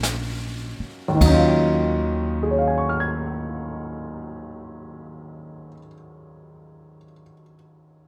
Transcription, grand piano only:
Already playing: F#3 A#3 C#4 D#4 F4 F#4
1.08 D#2
1.15 D#3
1.21 F#3
1.26 C#4 D#4
1.34 F4
2.43 G#4
2.51 C#5
2.58 F5
2.68 G#5
2.78 C#6
2.89 F6
3.00 G#6

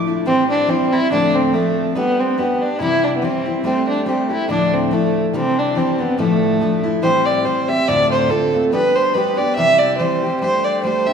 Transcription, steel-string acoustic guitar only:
0.07 F3 A3 D4 E4
0.25 A2 E3 G3 C4 E4
0.67 E3 G3 C4 E4
0.91 G3 C4 E4
1.10 D2 A2 F3 A3 C4 D4
1.53 F3 A3 C4 D4
1.95 G3 B3 D4 G4
2.38 G3 B3 D4 G4
2.80 C3 E3 G3 C4 E4
3.22 E3 G3 C4 E4
3.45 G3 C4 E4
3.64 G3 A3 D4 G4
4.06 G3 A3 D4 G4
4.29 A3 D4 G4
4.49 D2 A2 F3 A3 D4 E4
4.91 F3 A3 D4 E4
5.33 C3 E3 G3 C4 D4
5.75 E3 G3 C4 D4
5.98 G3 C4 D4
6.17 D2 A2 F3 A3 D4 E4
6.60 F3 A3 D4 E4
6.83 F3 A3 D4 E4
7.02 A2 E3 G3 C4 G4
7.45 E3 G3 C4 G4
7.68 G3 C4 G4
7.88 D2 A2 D3 A3 C4 F4
8.29 D3 A3 C4 F4
8.53 D3 A3 C4 F4
8.72 G3 B3 D4 G4
9.15 G3 B3 D4 G4
9.38 B3 D4 G4
9.57 C3 E3 G3 C4 G4
9.99 E3 G3 C4 G4
10.23 G3 C4 G4
10.42 G3 A3 D4 G4
10.83 G3 A3 D4 G4
11.06 A3 D4 G4

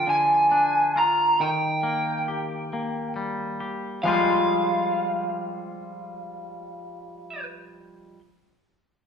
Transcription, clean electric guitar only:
Already playing: F3 F4
0.07 D3
0.51 D4
0.96 F4
1.40 D#3
1.83 A#3
2.28 G4
2.73 A#3
3.16 G3
3.60 G4
4.04 F3 G3 G#3 F4
4.08 C5

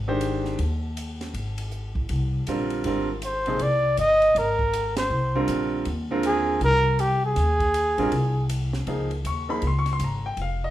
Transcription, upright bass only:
Already playing: G#1
0.59 D#2
1.34 G#1
1.95 A1
2.10 C2
2.47 A#1
2.85 G#1
3.60 C2
3.98 G1
4.35 G#1
5.10 C2
5.48 A#1
5.86 D#2
6.61 C2
7.36 D#2
7.98 A#1
8.12 C2
8.87 C#2
9.24 D#2
9.62 C#2
10.00 G#1
10.37 F1

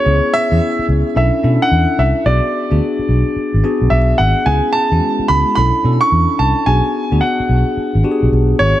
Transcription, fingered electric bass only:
0.06 C#2
0.52 E2
0.79 muted fingered electric bass stroke
0.89 C#2
1.16 B1
1.44 B2
1.72 E2
1.99 C2
2.26 B1
2.72 D2
2.99 muted fingered electric bass stroke
3.09 B1
3.36 muted fingered electric bass stroke
3.54 G#1
3.82 B1
3.91 B1
4.19 G#1
4.46 C#2
4.92 E2
5.19 muted fingered electric bass stroke
5.30 C#2
5.57 B1
5.85 B2
6.12 E2
6.40 C2
6.67 B1
7.12 D2
7.40 muted fingered electric bass stroke
7.49 B1
7.77 muted fingered electric bass stroke
7.95 G#1
8.23 B1
8.32 B1
8.60 G#1

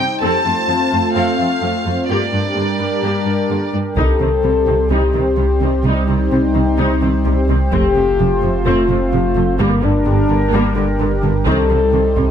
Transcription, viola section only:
0.21 C4 A4
0.45 A3 F4
0.68 F3 C4
0.93 A3 F4
1.15 C4 A4
1.39 A3 F4
1.62 F3 C4
1.85 A3 F4
2.09 A#3 G4
2.33 G3 D4
2.55 D3 A#3
2.79 G3 D4
3.04 A#3 G4
3.26 G3 D4
3.50 D3 A#3
3.74 G3 D4
3.96 G3 D#4
4.20 D#3 C4
4.44 C3 G3
4.67 D#3 C4
4.91 G3 D#4
5.15 D#3 C4
5.38 C3 G3
5.63 D#3 C4
5.86 G3 D#4
6.09 D#3 C4
6.32 C3 G3
6.54 D#3 C4
6.78 G3 D#4
7.02 D#3 C4
7.25 C3 G3
7.49 D#3 C4
7.72 A3 C4
7.96 F3 A3
8.20 C3 F3
8.43 F3 A3
8.66 A3 C4
8.89 F3 A3
9.13 C3 F3
9.36 F3 A3
9.59 G3 A#3
9.82 D3 G3
10.06 D3
10.30 D3 G3
10.52 G3 A#3
10.76 D3 G3
11.00 D3
11.22 D3 G3
11.46 D#3 C4
11.70 C3 G3
11.94 C3 D#3
12.16 C3 G3

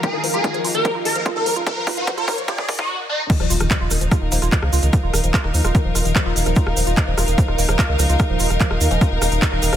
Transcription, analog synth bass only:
0.14 D#1
0.24 D#1
0.34 D#1
0.54 D#1
0.65 D#1
0.75 D#1
0.95 D#1
1.05 D#1
1.16 D#1
1.36 C#2
1.46 C#2
1.56 C#2
1.77 D#1
1.87 D#1
1.97 D#1
2.18 D#1
2.28 D#2
2.38 D#1
2.58 D#1
2.69 D#1
2.79 D#1
3.40 D#1
3.50 D#1
3.60 D#1
3.81 D#1
3.91 D#1
4.01 D#1
4.22 D#1
4.32 D#1
4.42 D#1
4.63 C#2
4.73 C#2
4.83 C#2
5.03 D#1
5.14 D#1
5.24 D#1
5.44 D#1
5.54 D#2
5.65 D#1
5.85 D#1
5.95 D#1
6.05 D#1
6.26 D#1
6.36 D#1
6.46 D#1
6.67 D#1
6.77 D#1
6.87 D#1
7.07 D#1
7.18 D#1
7.28 D#1
7.48 D#1
7.58 D#1
7.69 D#1
7.89 C#2
7.99 C#2
8.09 C#2
8.30 D#1
8.40 D#1
8.50 D#1
8.71 D#1
8.81 D#2
8.91 D#1
9.11 D#1
9.22 D#1
9.32 D#1
9.52 D#1
9.62 D#1
9.73 D#1

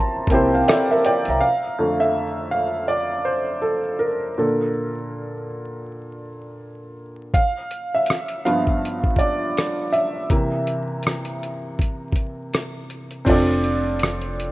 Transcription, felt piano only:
Already playing: A#3 C4 E4 G4 C5 A5 A#5 C6
0.29 A#3 C4 E4 G4 G5
0.34 C5
0.54 F5
0.68 A4 D5 E5
0.91 A#4 E5
1.06 D5 G5
1.30 E5 A#5
1.41 F5
1.79 F2 D3 A3
2.00 E5
2.51 F5
2.88 D5
3.25 C5
3.62 A4
3.99 A#4
4.38 A#2 D3 A4
7.34 F5
7.94 E5
8.45 G2 F3 B3 F5
9.19 D5
9.92 E5
10.30 C3 E3 A#3
13.25 C4 D4 F4 A4
13.29 D5

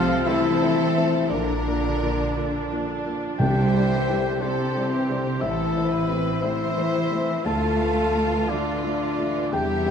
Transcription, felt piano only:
Already playing: C2 A3 C4 C5 F5
0.27 A3 C4 C5 E5
0.62 A3 C4 C5
0.97 A3 C4 C5
1.29 A#1 D5
1.67 A#3 F4 D5
2.02 A#3 F4 D5
2.36 A#3 F4 D5
2.72 A#3 F4 D5
3.06 A#3 F4 D5
3.39 C2 G5
3.76 G3 E4 D5
4.09 G3 E4 D5
4.41 G3 E4 C5 D5
4.77 G3 E4 D5
5.09 G3 E4 D5
5.41 A1 E5
5.77 A3 E4 C5
6.10 A3 C4 E4
6.42 A3 E4 C5 E5
6.77 A3 E4 C5
7.12 A3 E4 C5
7.45 D2 A5
7.80 A3 F4 F5
8.14 A3 F4 F5
8.49 A3 F4 D5 E5
8.83 A3 F4 E5
9.18 A3 F4 E5
9.52 E2 G5
9.86 C4 G4 E5

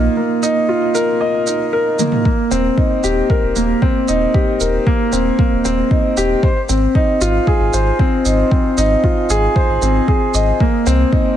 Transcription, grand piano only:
Already playing: A#3 D#4 F4 A#4 D#5
0.17 A#3
0.43 D#4
0.69 F4
0.95 A#4
1.21 D#5
1.47 D#4
1.73 A#4
1.99 A#3
2.25 A#3
2.51 C4
2.78 D#4
3.04 G4
3.30 A#4
3.56 A#3
3.82 C4
4.08 D#4
4.34 G4
4.60 A#4
4.87 A#3
5.13 C4
5.39 A#3
5.65 C4
5.91 D#4
6.17 G4
6.43 C5
6.69 C4
6.95 D#4
7.21 F4
7.48 G#4
7.74 C5
8.00 C4
8.25 D#4
8.52 C4
8.78 D#4
9.04 F4
9.30 G#4
9.56 C5
9.82 C4
10.08 G#4
10.34 D#5
10.61 A#3
10.87 C4
11.13 D#4

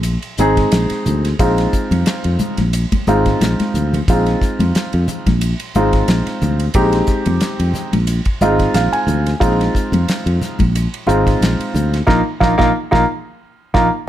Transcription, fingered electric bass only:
Already playing: A#1
0.39 G#1
0.72 A#1
0.91 muted fingered electric bass stroke
1.07 D2
1.39 A#1
1.91 F2
2.06 muted fingered electric bass stroke
2.25 F2
2.58 A#1
3.07 G#1
3.41 A#1
3.74 D2
4.08 A#1
4.59 F2
4.75 muted fingered electric bass stroke
4.94 F2
5.27 A#1
5.75 G#1
6.08 A#1
6.42 D2
6.75 A#1
7.26 F2
7.42 muted fingered electric bass stroke
7.60 F2
7.93 A#1
8.41 G#1
8.74 A#1
8.92 muted fingered electric bass stroke
9.07 D2
9.42 A#1
9.92 F2
10.08 muted fingered electric bass stroke
10.26 F2
10.60 A#1
11.09 G#1
11.41 A#1
11.59 muted fingered electric bass stroke
11.75 D2
12.08 A#1
12.41 A#1
12.60 A#1
12.94 A#1
13.75 A#1

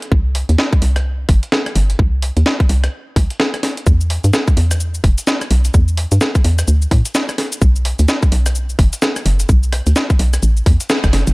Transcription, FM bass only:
0.12 C2
0.49 D#2
0.82 C2
1.29 G1
1.76 G1
1.99 C2
2.37 D#2
2.69 C2
3.16 C2
3.87 E2
4.24 G2
4.57 E2
5.04 E1
5.51 B1
5.74 E2
6.12 G2
6.45 E2
6.68 D2
6.91 A2
7.62 B1
7.99 D2
8.32 B1
8.79 F#1
9.26 F#1
9.49 B1
9.87 D2
10.19 B1
10.43 A1
10.66 E2
11.04 F#1
11.13 F#1
11.27 F#1

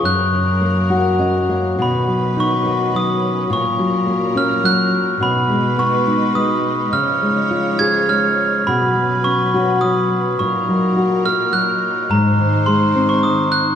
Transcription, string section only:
Already playing: C#4
0.05 F#3 A#4
1.79 D#3 C#4 B4
3.52 A#2 F#3 A#4
5.21 B2 G#3 D#4 B4
6.92 F3 C#5
8.67 F#3 C#4 B4
10.40 A#2 D#4 A#4
12.11 G#3 C5

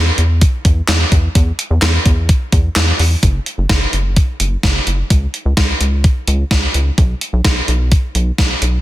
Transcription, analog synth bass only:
Already playing: E2
0.18 E2
0.65 E2
0.88 E2
1.12 E2
1.35 E2
1.70 E2
1.82 E2
2.06 E2
2.53 E2
2.76 E2
2.99 E2
3.23 F#1
3.58 F#1
3.69 F#1
3.93 F#1
4.40 F#1
4.63 F#1
4.87 F#1
5.10 C#2
5.45 C#2
5.57 C#2
5.81 C#2
6.28 C#2
6.51 C#2
6.74 C#2
6.98 B1
7.33 B1
7.45 B1
7.68 B1
8.15 B1
8.38 B1
8.62 B1

